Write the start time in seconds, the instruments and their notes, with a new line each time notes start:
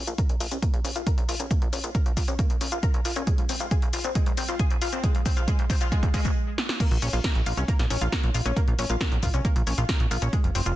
0.07 analog synth bass A#1, synth pluck F4, closed hi-hat, shaker
0.18 synth pluck A#4, kick, closed hi-hat, shaker
0.29 analog synth bass A#1, closed hi-hat
0.40 analog synth bass A#1, synth pluck F4, open hi-hat, shaker
0.51 analog synth bass C2, synth pluck C#4, closed hi-hat, shaker
0.62 synth pluck A#3, kick, closed hi-hat, shaker
0.74 analog synth bass A#1, closed hi-hat
0.84 analog synth bass A#1, synth pluck C#4, open hi-hat, shaker
0.96 analog synth bass A#1, synth pluck F4, closed hi-hat, shaker
1.07 synth pluck A#4, kick, closed hi-hat, shaker
1.18 analog synth bass A#1, closed hi-hat
1.29 analog synth bass A#1, synth pluck F4, open hi-hat, shaker
1.40 analog synth bass A#1, synth pluck C#4, closed hi-hat, shaker
1.51 synth pluck A#3, kick, closed hi-hat, shaker
1.62 analog synth bass A#1, closed hi-hat
1.73 analog synth bass A#1, synth pluck C#4, open hi-hat, shaker
1.84 analog synth bass A#1, synth pluck F4, closed hi-hat, shaker
1.95 synth pluck A#4, kick, closed hi-hat, shaker
2.06 analog synth bass A#1, closed hi-hat
2.17 analog synth bass A#1, synth pluck F4, kick, open hi-hat, shaker
2.28 analog synth bass C2, synth pluck C#4, closed hi-hat, shaker
2.39 synth pluck A#3, kick, closed hi-hat, shaker
2.50 analog synth bass A#1, closed hi-hat
2.61 analog synth bass A#1, synth pluck C#4, open hi-hat, shaker
2.72 analog synth bass A#1, synth pluck F4, closed hi-hat, shaker
2.83 synth pluck A#4, kick, closed hi-hat, shaker
2.94 analog synth bass A#1, closed hi-hat
3.05 analog synth bass A#1, synth pluck F4, open hi-hat, shaker
3.16 analog synth bass A#1, synth pluck C#4, closed hi-hat, shaker
3.27 synth pluck G#3, kick, closed hi-hat, shaker
3.38 analog synth bass F1, closed hi-hat
3.49 analog synth bass F1, synth pluck C4, open hi-hat, shaker
3.60 analog synth bass F1, synth pluck F4, closed hi-hat, shaker
3.71 synth pluck G#4, kick, closed hi-hat, shaker
3.82 analog synth bass F1, closed hi-hat
3.93 analog synth bass F1, synth pluck F4, open hi-hat, shaker
4.04 analog synth bass G1, synth pluck C4, shaker
4.15 synth pluck G#3, kick, closed hi-hat, shaker
4.26 analog synth bass F1, closed hi-hat
4.37 analog synth bass F1, synth pluck C4, open hi-hat, shaker
4.48 analog synth bass F1, synth pluck F4, closed hi-hat, shaker
4.59 synth pluck G#4, kick, closed hi-hat, shaker
4.70 analog synth bass F1, closed hi-hat
4.82 analog synth bass F1, synth pluck F4, open hi-hat, shaker
4.93 analog synth bass F1, synth pluck C4, closed hi-hat, shaker
5.04 synth pluck G#3, kick, closed hi-hat, shaker
5.15 analog synth bass F1, closed hi-hat
5.26 analog synth bass F1, synth pluck C4, kick, open hi-hat, shaker
5.37 analog synth bass F1, synth pluck F4, closed hi-hat, shaker
5.48 synth pluck G#3, kick, closed hi-hat, shaker
5.59 analog synth bass F1, closed hi-hat
5.70 synth pluck C4, kick, open hi-hat, shaker
5.81 analog synth bass G1, synth pluck F4, closed hi-hat, shaker
5.92 synth pluck G#3, kick, closed hi-hat, shaker
6.03 kick, closed hi-hat
6.14 analog synth bass F2, synth pluck G#3, kick, open hi-hat, shaker
6.25 analog synth bass F1, kick, closed hi-hat, shaker
6.58 snare
6.69 snare
6.80 synth pluck A#3, kick, closed hi-hat, crash, shaker
6.91 analog synth bass A#1, closed hi-hat
7.02 analog synth bass A#1, synth pluck C#4, open hi-hat, shaker
7.13 analog synth bass A#1, synth pluck F4, shaker
7.24 synth pluck A#4, kick, snare, closed hi-hat, shaker
7.35 analog synth bass A#1, closed hi-hat
7.46 analog synth bass A#1, synth pluck F4, open hi-hat, shaker
7.57 analog synth bass C2, synth pluck C#4, closed hi-hat, shaker
7.68 synth pluck A#3, kick, closed hi-hat, shaker
7.79 analog synth bass A#1, snare, closed hi-hat
7.90 analog synth bass A#1, synth pluck C#4, open hi-hat, shaker
8.01 analog synth bass A#1, synth pluck F4, closed hi-hat, shaker
8.12 synth pluck A#4, kick, snare, closed hi-hat, shaker
8.23 analog synth bass A#1, closed hi-hat
8.34 analog synth bass A#1, synth pluck F4, open hi-hat, shaker
8.46 analog synth bass A#1, synth pluck C#4, closed hi-hat, shaker
8.57 synth pluck A#3, kick, closed hi-hat, shaker
8.68 analog synth bass A#1, closed hi-hat
8.79 analog synth bass A#1, synth pluck C#4, open hi-hat, shaker
8.90 analog synth bass A#1, synth pluck F4, closed hi-hat, shaker
9.01 synth pluck A#4, kick, snare, closed hi-hat, shaker
9.12 analog synth bass A#1, closed hi-hat
9.23 analog synth bass A#1, synth pluck F4, kick, open hi-hat, shaker
9.34 analog synth bass C2, synth pluck C#4, closed hi-hat, shaker
9.45 synth pluck A#3, kick, closed hi-hat, shaker
9.56 analog synth bass A#1, closed hi-hat
9.67 analog synth bass A#1, synth pluck C#4, open hi-hat, shaker
9.78 analog synth bass A#1, synth pluck F4, closed hi-hat, shaker
9.89 synth pluck A#4, kick, snare, closed hi-hat, shaker
10.00 analog synth bass A#1, closed hi-hat
10.11 analog synth bass A#1, synth pluck F4, open hi-hat, shaker
10.22 analog synth bass A#1, synth pluck C#4, closed hi-hat, shaker
10.33 synth pluck G#3, kick, closed hi-hat, shaker
10.44 analog synth bass F1, closed hi-hat
10.55 analog synth bass F1, synth pluck C4, open hi-hat, shaker
10.66 analog synth bass F1, synth pluck F4, shaker